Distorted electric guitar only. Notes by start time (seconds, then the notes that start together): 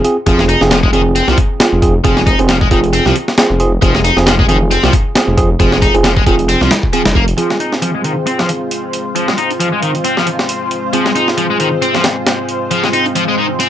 0.27 F3
0.39 G#3
0.49 D#4
0.71 F3
0.83 G#3
0.93 D#3
1.15 C4
1.28 F3
2.04 F3
2.17 G#3
2.27 D#4
2.49 F3
2.62 G#3
2.71 D#3
2.93 C4
3.06 F3
3.82 F3
3.95 G#3
4.05 D#4
4.27 F3
4.39 G#3
4.49 D#3
4.71 C4
4.84 F3
5.60 F3
5.73 G#3
5.82 D#4
6.05 F3
6.17 G#3
6.27 D#3
6.49 C4
6.61 F3
6.93 F3
7.15 A#3
7.38 F3
7.50 G#3
7.60 D#4
7.82 F3
7.95 G#3
8.04 D#3
8.27 C4
8.39 F3
9.15 F3
9.28 G#3
9.38 D#4
9.60 F3
9.72 G#3
9.82 D#3
10.04 C4
10.17 F3
10.93 F3
11.06 G#3
11.15 D#4
11.38 F3
11.50 G#3
11.60 D#3
11.82 C4
11.95 F3
12.71 F3
12.84 G#3
12.93 D#4
13.16 F3
13.28 G#3
13.38 D#3
13.60 C4